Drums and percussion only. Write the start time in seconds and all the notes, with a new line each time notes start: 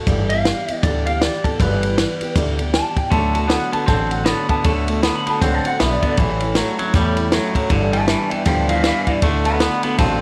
0.07 kick, ride
0.30 ride
0.45 snare, ride
0.68 ride
0.83 kick, ride
1.07 ride
1.22 snare, ride
1.44 kick, ride
1.60 kick, ride
1.83 ride
1.98 snare, ride
2.21 ride
2.36 kick, ride
2.59 ride
2.74 snare, ride
2.97 kick, ride
3.11 kick, ride
3.35 ride
3.50 snare, ride
3.73 ride
3.88 kick, snare, ride
4.11 ride
4.26 snare, ride
4.49 kick, ride
4.64 kick, ride
4.88 ride
5.03 snare, ride
5.27 ride
5.42 kick, snare, ride
5.65 ride
5.80 snare, ride
6.03 kick, ride
6.17 kick, ride
6.40 ride
6.55 snare, ride
6.79 ride
6.94 kick, snare, ride
7.17 ride
7.32 snare, ride
7.55 kick, ride
7.70 kick, ride
7.93 ride
8.08 snare, ride
8.31 ride
8.46 kick, snare, ride
8.69 ride
8.84 snare, ride
9.07 kick, ride
9.22 kick, ride
9.45 ride
9.60 snare, ride
9.83 ride
9.98 kick, snare, ride